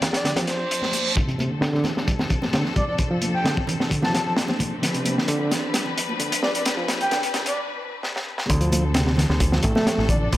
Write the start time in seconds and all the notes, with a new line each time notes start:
Already playing: F3 C4 D4 D5
0.01 snare, closed hi-hat, low conga
0.13 D5, snare, closed hi-hat
0.24 D3, snare, closed hi-hat, reverse cymbal
0.36 F3, snare, closed hi-hat, low conga
0.47 C5, snare, closed hi-hat
0.71 closed hi-hat
0.82 snare, high conga
0.92 closed hi-hat, high conga
1.15 D3 F3 C4 D4 A4, kick, closed hi-hat, riser
1.28 C3, closed hi-hat
1.39 C3, closed hi-hat, high conga
1.50 D3
1.61 D3, snare, closed hi-hat
1.73 D3, snare
1.84 snare, closed hi-hat, low conga
1.97 snare
2.07 G3, kick, closed hi-hat
2.19 snare, low conga
2.30 kick, closed hi-hat
2.42 snare, high conga
2.53 D3, snare, closed hi-hat
2.65 snare
2.76 G3 D5, kick, closed hi-hat
2.88 D5
2.98 kick, closed hi-hat
3.11 F3
3.22 closed hi-hat, high conga
3.34 G5
3.45 D3, snare, closed hi-hat
3.57 kick
3.67 closed hi-hat, low conga
3.80 snare
3.90 D3, kick, closed hi-hat
4.02 F3 A5, snare, low conga
4.14 A5, snare, closed hi-hat
4.26 A5
4.37 snare, closed hi-hat
4.48 snare, high conga
4.59 kick, closed hi-hat, high conga
4.82 D3 B4, snare, closed hi-hat
4.94 C3, closed hi-hat
5.05 C3, closed hi-hat, high conga
5.17 D3, snare
5.28 D3, closed hi-hat
5.40 D3
5.51 snare, closed hi-hat, low conga
5.74 G3, snare, closed hi-hat
5.86 low conga
5.98 closed hi-hat
6.09 high conga
6.19 D3, closed hi-hat
6.32 closed hi-hat
6.43 G3 D5, snare
6.55 D5, closed hi-hat
6.65 snare, closed hi-hat
6.77 F3
6.88 snare, closed hi-hat, high conga
7.01 G5, closed hi-hat, low conga
7.11 D3, snare, closed hi-hat
7.23 closed hi-hat
7.34 snare, closed hi-hat, low conga
7.46 D5, closed hi-hat
8.03 snare
8.16 snare
8.38 snare
8.49 D2 D3 F3 C4 D4 A4, kick, closed hi-hat
8.61 F3, closed hi-hat
8.72 F3, closed hi-hat, high conga
8.94 C3, snare, closed hi-hat
9.07 snare
9.17 D3, snare, closed hi-hat, low conga
9.30 D2, snare
9.40 kick, closed hi-hat
9.52 F3, snare, low conga
9.63 A1 A3, kick, closed hi-hat
9.75 A3, snare, high conga
9.87 snare, closed hi-hat
9.98 A1, snare
10.09 D3 D5, kick, closed hi-hat
10.21 D5
10.33 D2, kick, closed hi-hat